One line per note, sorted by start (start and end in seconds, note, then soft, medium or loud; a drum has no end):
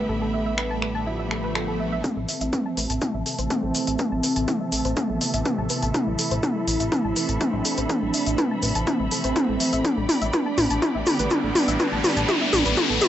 0.00 2.09 A2 medium
0.00 2.01 D3 medium
0.00 2.01 G3 medium
0.00 1.08 A3 loud
0.00 2.00 B3 medium
0.00 2.01 B3 medium
0.00 2.09 E4 medium
0.00 2.00 G4 medium
0.00 2.00 E5 medium
0.00 2.00 B5 medium
0.09 2.02 A1 medium
0.09 0.16 A4 medium
0.22 0.25 A4 medium
0.33 0.40 E5 medium
0.46 0.52 E5 loud
0.58 0.64 B4 loud
0.58 finger snap loud
0.70 0.74 A5 loud
0.82 0.89 B4 medium
0.82 finger snap medium
0.95 0.98 A5 loud
1.06 1.95 F3 loud
1.06 1.13 E4 medium
1.06 swell medium
1.19 1.25 E5 medium
1.31 1.41 A4 medium
1.31 finger snap medium
1.44 1.50 B4 loud
1.55 1.62 A4 medium
1.55 finger snap loud
1.68 1.72 A4 medium
1.80 1.86 E5 medium
1.92 1.98 E5 loud
2.04 9.81 C3 medium
2.04 3.41 C4 loud
2.04 2.11 A4 medium
2.04 9.81 A4 medium
2.04 9.81 E5 medium
2.04 5.91 A5 medium
2.04 kick loud
2.04 closed hi-hat medium
2.04 mid tom soft
2.04 shaker soft
2.17 2.26 A1 medium
2.17 2.20 A4 medium
2.29 2.35 E5 medium
2.29 open hi-hat medium
2.29 shaker medium
2.41 2.50 A1 medium
2.41 2.47 E5 loud
2.41 closed hi-hat medium
2.41 shaker soft
2.53 2.60 B4 medium
2.53 kick loud
2.53 closed hi-hat medium
2.53 mid tom soft
2.53 shaker soft
2.66 2.69 A5 loud
2.77 2.87 A1 medium
2.77 2.84 B4 medium
2.77 open hi-hat loud
2.77 shaker medium
2.90 2.99 A1 medium
2.90 2.94 A5 loud
2.90 closed hi-hat medium
2.90 shaker soft
3.01 3.08 E4 medium
3.01 kick loud
3.01 closed hi-hat medium
3.01 mid tom soft
3.01 shaker soft
3.14 3.23 A1 medium
3.14 3.20 E5 medium
3.26 5.18 E3 medium
3.26 5.18 A3 medium
3.26 5.18 C4 loud
3.26 3.36 A4 medium
3.26 open hi-hat medium
3.26 shaker medium
3.39 3.48 A1 medium
3.39 3.45 C5 loud
3.39 closed hi-hat medium
3.39 shaker medium
3.50 4.98 C4 loud
3.50 3.57 A4 medium
3.50 kick loud
3.50 closed hi-hat medium
3.50 mid tom soft
3.50 shaker soft
3.63 3.72 A1 medium
3.63 3.67 A4 medium
3.75 3.81 E5 medium
3.75 open hi-hat loud
3.75 shaker loud
3.87 3.97 A1 medium
3.87 3.94 E5 medium
3.87 closed hi-hat medium
3.87 shaker soft
3.98 4.06 B4 loud
3.98 kick loud
3.98 closed hi-hat medium
3.98 mid tom soft
3.98 shaker soft
4.12 4.21 A1 medium
4.12 4.16 A5 loud
4.23 4.30 B4 medium
4.23 open hi-hat loud
4.23 shaker loud
4.36 4.45 A1 medium
4.36 4.40 A5 loud
4.36 closed hi-hat soft
4.36 shaker soft
4.48 4.55 E4 loud
4.48 kick loud
4.48 closed hi-hat medium
4.48 mid tom soft
4.48 shaker soft
4.61 4.67 E5 medium
4.72 4.82 A1 medium
4.72 4.82 A4 medium
4.72 open hi-hat loud
4.72 shaker loud
4.85 4.94 A1 medium
4.85 4.91 C5 loud
4.85 closed hi-hat medium
4.85 shaker soft
4.96 5.85 B3 loud
4.96 5.03 A4 medium
4.96 kick loud
4.96 closed hi-hat medium
4.96 mid tom medium
4.96 shaker soft
5.09 5.19 A1 medium
5.09 5.13 A4 medium
5.21 7.14 C3 loud
5.21 7.13 E3 medium
5.21 7.14 A3 medium
5.21 5.28 E5 medium
5.21 open hi-hat loud
5.21 shaker medium
5.34 5.43 A1 medium
5.34 5.40 E5 loud
5.34 closed hi-hat medium
5.34 shaker soft
5.45 5.52 B4 medium
5.45 kick loud
5.45 closed hi-hat medium
5.45 mid tom medium
5.45 shaker soft
5.58 5.67 A1 medium
5.58 5.62 A5 medium
5.70 5.77 B4 medium
5.70 open hi-hat loud
5.70 shaker medium
5.82 5.92 A1 medium
5.82 5.86 A5 loud
5.82 closed hi-hat medium
5.82 shaker soft
5.94 7.42 E4 loud
5.94 6.01 E4 loud
5.94 13.08 B5 medium
5.94 kick loud
5.94 closed hi-hat medium
5.94 mid tom medium
5.94 shaker soft
6.07 6.16 A1 medium
6.07 6.13 E5 medium
6.19 6.29 A4 medium
6.19 open hi-hat loud
6.19 shaker loud
6.31 6.40 A1 medium
6.31 6.37 C5 loud
6.31 closed hi-hat soft
6.31 shaker soft
6.43 6.50 A4 medium
6.43 kick loud
6.43 closed hi-hat soft
6.43 mid tom medium
6.43 shaker soft
6.56 6.59 A4 medium
6.67 6.77 A1 loud
6.67 6.74 E5 medium
6.67 open hi-hat loud
6.67 shaker medium
6.80 6.89 A1 medium
6.80 6.86 E5 loud
6.80 closed hi-hat medium
6.80 shaker medium
6.92 6.98 B4 medium
6.92 kick loud
6.92 closed hi-hat medium
6.92 mid tom medium
6.92 shaker soft
7.05 7.14 A1 medium
7.05 7.08 A5 loud
7.16 9.09 E3 medium
7.16 9.09 A3 medium
7.16 9.09 C4 loud
7.16 7.23 B4 medium
7.16 open hi-hat loud
7.16 shaker medium
7.29 7.38 A1 medium
7.29 7.33 A5 loud
7.29 closed hi-hat medium
7.29 shaker medium
7.41 8.78 D4 loud
7.41 7.47 E4 medium
7.41 kick loud
7.41 closed hi-hat medium
7.41 mid tom medium
7.41 shaker soft
7.53 7.62 A1 medium
7.53 7.59 E5 medium
7.65 7.75 A4 medium
7.65 open hi-hat loud
7.65 shaker medium
7.77 7.87 A1 medium
7.77 7.84 C5 loud
7.77 closed hi-hat medium
7.77 shaker soft
7.89 7.96 A4 medium
7.89 kick loud
7.89 closed hi-hat medium
7.89 mid tom medium
7.89 shaker soft
8.02 8.11 A1 medium
8.02 8.06 A4 medium
8.14 8.20 E5 medium
8.14 open hi-hat loud
8.14 shaker medium
8.26 8.36 A1 medium
8.26 8.33 E5 loud
8.26 closed hi-hat soft
8.26 shaker soft
8.38 8.45 B4 loud
8.38 kick loud
8.38 closed hi-hat medium
8.38 mid tom medium
8.38 shaker soft
8.51 8.55 A5 loud
8.62 8.72 A1 medium
8.62 8.69 B4 medium
8.62 open hi-hat loud
8.62 shaker medium
8.75 8.84 A1 medium
8.75 8.79 A5 loud
8.75 closed hi-hat medium
8.75 shaker medium
8.87 9.86 C4 loud
8.87 8.94 E4 medium
8.87 kick loud
8.87 closed hi-hat medium
8.87 mid tom medium
8.87 shaker soft
9.00 9.09 A1 medium
9.00 9.06 E5 medium
9.11 9.83 E3 medium
9.11 9.83 A3 medium
9.11 9.83 C4 loud
9.11 9.21 A4 medium
9.11 open hi-hat loud
9.11 shaker medium
9.24 9.33 A1 medium
9.24 9.30 C5 loud
9.24 closed hi-hat medium
9.24 shaker soft
9.36 9.42 A4 medium
9.36 kick loud
9.36 closed hi-hat medium
9.36 mid tom medium
9.36 shaker soft
9.49 9.58 A1 medium
9.49 9.52 A4 medium
9.60 9.67 E5 medium
9.60 open hi-hat loud
9.60 shaker medium
9.73 9.82 A1 medium
9.73 9.79 E5 loud
9.73 closed hi-hat medium
9.73 shaker soft
9.85 13.08 B3 medium
9.85 11.22 D4 loud
9.85 13.08 G4 medium
9.85 9.91 A4 medium
9.85 13.08 D5 medium
9.85 kick loud
9.85 closed hi-hat medium
9.85 mid tom medium
9.85 riser medium
9.85 shaker soft
9.97 10.06 A1 medium
9.97 10.01 A4 medium
10.09 10.16 E5 medium
10.09 open hi-hat loud
10.09 mid tom medium
10.09 shaker loud
10.22 10.31 A1 medium
10.22 10.28 E5 loud
10.22 closed hi-hat soft
10.22 shaker soft
10.33 10.40 B4 loud
10.33 kick loud
10.33 closed hi-hat medium
10.33 mid tom medium
10.33 shaker soft
10.46 10.50 A5 loud
10.58 10.68 A1 loud
10.58 10.64 B4 medium
10.58 open hi-hat loud
10.58 mid tom medium
10.58 shaker medium
10.70 10.80 A1 medium
10.70 10.74 A5 loud
10.70 closed hi-hat medium
10.70 shaker medium
10.82 10.89 E4 loud
10.82 kick loud
10.82 closed hi-hat medium
10.82 mid tom medium
10.82 shaker soft
10.95 11.04 A1 medium
10.95 11.01 E5 medium
11.06 12.99 D3 medium
11.06 12.99 G3 medium
11.06 12.99 B3 loud
11.06 11.16 A4 medium
11.06 open hi-hat loud
11.06 mid tom medium
11.06 shaker medium
11.19 11.28 A1 medium
11.19 11.25 B4 loud
11.19 closed hi-hat medium
11.19 shaker soft
11.30 12.79 D4 loud
11.30 11.38 A4 medium
11.30 kick loud
11.30 closed hi-hat medium
11.30 mid tom medium
11.30 shaker soft
11.44 11.53 A1 medium
11.44 11.47 A4 medium
11.55 11.62 E5 medium
11.55 open hi-hat loud
11.55 mid tom medium
11.55 shaker loud
11.68 11.77 A1 medium
11.68 11.74 E5 loud
11.68 closed hi-hat medium
11.68 shaker medium
11.80 11.86 B4 loud
11.80 kick loud
11.80 closed hi-hat medium
11.80 mid tom medium
11.80 shaker soft
11.92 12.01 A1 medium
11.92 11.96 A5 loud
12.04 12.11 B4 medium
12.04 open hi-hat loud
12.04 mid tom medium
12.04 shaker medium
12.16 12.26 A1 medium
12.16 12.20 A5 loud
12.16 closed hi-hat medium
12.16 shaker medium
12.28 12.35 E4 loud
12.28 kick loud
12.28 closed hi-hat medium
12.28 mid tom medium
12.28 shaker soft
12.41 12.47 E5 medium
12.53 12.63 A1 loud
12.53 12.63 A4 medium
12.53 open hi-hat loud
12.53 mid tom medium
12.53 shaker medium
12.65 12.75 A1 medium
12.65 12.72 B4 loud
12.65 closed hi-hat medium
12.65 shaker soft
12.77 13.08 B3 loud
12.77 12.84 A4 medium
12.77 kick loud
12.77 closed hi-hat medium
12.77 mid tom medium
12.77 shaker soft
12.90 12.99 A1 medium
12.90 12.94 A4 medium
13.01 13.08 D3 medium
13.01 13.08 G3 medium
13.01 13.08 B3 loud
13.01 13.08 E5 medium
13.01 open hi-hat medium
13.01 mid tom medium
13.01 shaker medium